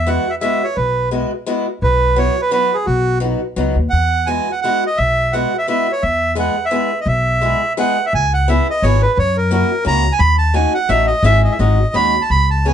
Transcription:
Already playing: E2
0.07 G#3 B3 E4 F#4 F#5
0.30 E5
0.41 G#3 B3 E4 F#4 E5
0.64 C#5
0.76 B1 B4
1.11 G#3 B3 E4 F#4
1.46 G#3 B3 E4 F#4
1.82 B1 B4
2.16 F#3 B3 E4 F#4 C#5
2.41 B4
2.51 F#3 B3 E4 F#4 B4
2.74 G#4
2.86 B1 F#4
3.20 F#3 B3 D#4 F#4
3.56 C#2 F#3 B3 D#4 F#4
3.76 D#2
3.90 E2 F#5
4.27 G#3 B3 E4 F#4 G#5
4.52 F#5
4.62 G#3 B3 E4 F#4 F#5
4.87 D#5
4.97 B1 E5
5.32 G#3 B3 E4 F#4 F#5
5.58 E5
5.67 G#3 B3 E4 F#4 E5
5.92 C#5
6.02 E2 E5
6.35 G#3 B3 E4 G#4 F#5
6.65 E5
6.71 G#3 B3 E4 G#4
7.01 D#5
7.06 B1 E5
7.41 G#3 B3 E4 G#4
7.77 G#3 B3 E4 G#4 F#5
8.06 E5
8.13 C#2 G#5
8.34 F#5
8.48 B3 C#4 E4 G#4 E5
8.70 D#5
8.82 G#1 B3 C#4 E4 G#4 C#5
9.02 B4
9.17 F#2 C#5
9.37 A#4
9.51 A#3 C#4 E4 F#4 A#4
9.85 C#2 A#3 C#4 E4 F#4 A#5
10.12 G#5
10.19 D#2 B5
10.38 A5
10.54 A3 C#4 D#4 F#4 G#5
10.74 F#5
10.89 A1 A3 C#4 D#4 F#4 E5
11.07 D#5
11.23 G#1 G#3 C#4 E4 G#4 E5
11.44 D#5
11.52 E5
11.59 G#1 G#3 C#4 D#4 F#4 D#5
11.94 D#2 G#3 C#4 D#4 F#4 B5
12.21 A5
12.30 C#2 B5
12.50 A5
12.65 B3 C#4 E4 G#4 G#5

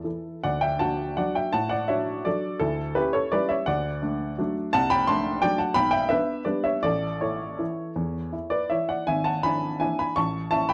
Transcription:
0.04 E3 E4 A4
0.44 D2 D5 F#5
0.61 E5 G5
0.79 D4 F#4 F#5 A5
1.17 F#3 D4 F#4 D5 F#5
1.35 E5 G5
1.53 A2 F#5 A5
1.69 D5 F#5
1.88 D4 F#4 C#5 E5
2.25 F#3 D4 F#4 A4 D5
2.60 D2 E4 A4
2.95 C#4 E4 G4 B4
3.13 A4 C#5
3.32 G3 C#4 E4 B4 D5
3.49 C#5 E5
3.66 D2 D5 F#5
4.02 A3 D4
4.38 F#3 A3 D4
4.73 C2 F#5 A5
4.90 G5 B5
5.07 A3 D4 A5 C6
5.42 F#3 A3 D4 D5 G5
5.58 F#5 A5
5.74 B1 G5 B5
5.91 E5 G5
6.09 B3 D4 B4 E5
6.45 G3 B3 D4 B4 D5
6.64 C#5 E5
6.83 A1 A4 D5
7.21 E4 A4 C#5
7.59 E3 E4
7.96 E2
8.33 E4
8.50 B4 D5
8.70 E3 E4 C#5 E5
8.89 D5 F#5
9.07 G#1 E5 G#5
9.24 F#5 A5
9.43 D4 E4 G#5 B5
9.80 E3 D4 E4 E5 G#5
9.99 G#5 B5
10.16 A1 A5 C#6
10.51 C#4 E4 E5 A5
10.69 G5 B5

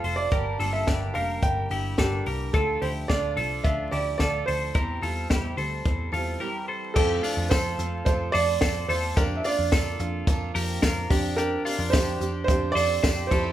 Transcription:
Already playing: F3 A3 C4 F4 F5
0.04 F1 A4 C5, open hi-hat
0.16 D5
0.31 G1 G2 D3 G3 A#3 D4 G4 A#4, kick, closed hi-hat
0.58 G1 G3 A#3 D4 F4 A4, open hi-hat
0.73 E5
0.87 G1 G2 D3 G3 A#3 D4 G4, kick, snare, closed hi-hat
1.14 F1 G3 A#3 D4 G4 A#4 F5, open hi-hat
1.42 G1 D3 G3 A#3 D4 G5, kick, closed hi-hat
1.70 G1 G3 A#3 D4 E4 G4, open hi-hat
1.98 G1 G2 D3 G3 A#3 D4 G4 A4, kick, snare, closed hi-hat
2.26 C2 G4 A#4, open hi-hat
2.53 D2 D3 F3 A3 D4 F4 A4, kick, closed hi-hat
2.80 D2 F3 A3 D4 E4 G4 C5, open hi-hat
3.08 D2 D3 F3 A3 D4 F4 D5, kick, snare, closed hi-hat
3.36 C2 F3 A3 D4 F4 A4, open hi-hat
3.63 D2 D3 F3 A3 D4 F4 E5, kick, closed hi-hat
3.91 D2 F3 A3 D4 E4 G4 D5, open hi-hat
4.18 D2 D3 F3 A3 F4 A4 D5, kick, snare, closed hi-hat
4.22 D4
4.46 D2 A4 C5, open hi-hat
4.75 E2 E3 G3 C4 E4 G4 A#4, kick, closed hi-hat
5.02 E2 G3 C4 E4 F4 A4, open hi-hat
5.29 E2 E3 G3 C4 E4 G4, kick, snare, closed hi-hat
5.57 D2 G3 C4 E4 A4 C5, open hi-hat
5.84 E2 E3 G3 C4 E4, kick, closed hi-hat
6.12 E2 G3 C4 E4 F4 A4, open hi-hat
6.40 E3 G3 C4 E4 G4 A#4
6.68 A4 C5
6.94 F2 F3 A3 C4 G4 A4, kick, crash, tambourine
6.98 F4
7.23 D4 F4, hi-hat pedal, open hi-hat, tambourine
7.37 F2
7.49 F2 F3 A3 C4 F4 A4 C5, kick, snare, hi-hat pedal, open hi-hat, tambourine
7.54 F4
7.79 F2 A3 C4 F4, hi-hat pedal, open hi-hat
8.05 F2 F3 A3 C4 F4 C5, kick, hi-hat pedal, open hi-hat, tambourine
8.32 F2 A4 C5 D5, hi-hat pedal, open hi-hat, tambourine
8.60 F2 F3 A3 C4 F4 A4 C5, kick, snare, hi-hat pedal, open hi-hat, tambourine
8.88 E2 F4 A4 C5, hi-hat pedal, open hi-hat, tambourine
9.16 F2 F3 A#3 D4 F4 G4 A#4, kick, hi-hat pedal, open hi-hat, tambourine
9.37 E5
9.43 A#3 D4 F4 D5, hi-hat pedal, open hi-hat, tambourine
9.59 F2
9.71 F2 F3 A#3 D4 F4 A4, kick, snare, hi-hat pedal, open hi-hat, tambourine
9.99 F2 A#3 D4 F4, hi-hat pedal, open hi-hat
10.27 F2 F3 A#3 D4 F4, kick, hi-hat pedal, open hi-hat, tambourine
10.55 F2 G4 A#4, hi-hat pedal, open hi-hat, tambourine
10.81 F2 F3 A#3 D4 F4 A#4, kick, snare, hi-hat pedal, open hi-hat, tambourine
11.09 F2 F3 C4 D4 G4, kick, hi-hat pedal, open hi-hat, tambourine
11.36 D4 G4 A#4, hi-hat pedal, open hi-hat, tambourine
11.65 C4 D4 F4 G4, hi-hat pedal, open hi-hat, tambourine
11.79 F2
11.90 F2 F3 C4 D4 G4 C5, kick, snare, hi-hat pedal, open hi-hat, tambourine
11.94 D4 G4
12.19 F2 C4 D4 G4, hi-hat pedal, open hi-hat, tambourine
12.44 F2 F3 C4 C5, kick
12.49 D4 G4, hi-hat pedal, open hi-hat
12.72 F2 C5 D5
12.76 A4, hi-hat pedal, open hi-hat, tambourine
13.02 F2 F3 C4 D4 G4 C5, kick, snare, tambourine
13.27 G4 A4 C5
13.31 F2 F3 C4 E4, kick, tambourine, crash

